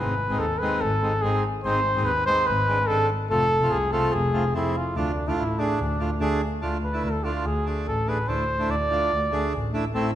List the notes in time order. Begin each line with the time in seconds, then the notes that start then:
Already playing: G#3 B4
0.00 G#1 C4 D#4
0.30 G#1 G#3 C4 D#4
0.39 D#2 A4
0.58 G#3 C4 B4
0.63 D#4
0.81 G#1 A4
1.02 G#3 C4 D#4
1.22 G#1 G#3 C4 D#4 G#4
1.64 G#1 G#3 C4 D#4 C5
1.96 G#1 G#3 C4 D#4
2.05 D#2 B4
2.26 G#3 C4 D#4 C5
2.47 G#1 B4
2.68 G#3 C4 D4
2.87 G#1 G#3 C4 D4 A4
3.30 F1 A3 C4 F4 A4
3.61 F1 A3 C4 F4
3.71 C2 G#4
3.92 A3 C4 F4 A4
4.12 F1 G#4
4.33 A3 C4 F4
4.54 F1 A3 C4 E4 G#4
4.77 F4
4.95 D2 A3 D4 F4
5.27 D2 A3 D4 E4 F4
5.38 A1 E4
5.58 A3 D4 G#4
5.79 D2
5.99 A3 D4 F4
6.20 D2 A3 D4 G#4
6.61 D2 A3 D4 F4
6.84 B4
6.92 A3 D4 E4
7.04 D2 A4
7.24 A3 D4 F4
7.45 D2 G#4
7.65 A3 D4 G#4
7.87 A1 A4
8.06 A3 D4 G#4 B4
8.28 D2 A3 D4 E4 C5
8.59 A3 D4 E4
8.69 D2 D5
8.90 A3 D4 F4
9.11 D2
9.31 A3 D4 G#4
9.53 A1
9.73 A3 D4 E4
9.94 A1 A3 C4 E4